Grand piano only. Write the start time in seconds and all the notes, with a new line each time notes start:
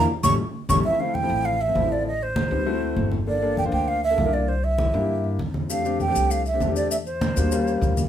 0.24 G3 A3 C#4
0.70 G3 A3 C#4
0.84 F3 A3 C4 E4
1.00 F3 A3 C4 E4
1.22 F3 A3 C4 E4
1.67 F3 A3 C4 F4
1.75 F3 A3 C4 E4
1.83 F3 A3 C4 E4
2.51 G3 B3 C4 D#4
2.66 A3 C4 E4 F#4
3.27 A#3 D4 F4 A4
3.42 A#3 D4 F4 A4
3.65 A#3 D4 F4 C5
4.10 A#3 D4 F4 A4
4.17 A#3 D4 F4 A4
4.25 A#3 D4 F4 A#4
4.94 A#3 D4 E4 G4
5.70 A3 C4 D4 G4
5.85 A3 C4 D4 G4
6.08 A3 C4 D4 G4
6.53 A3 C4 D4 G4
6.61 A3 C4 D4 G4
6.68 A3 C4 D4 G4
7.37 G3 A#3 D4 F#4
7.51 G3 A#3 C#4 F4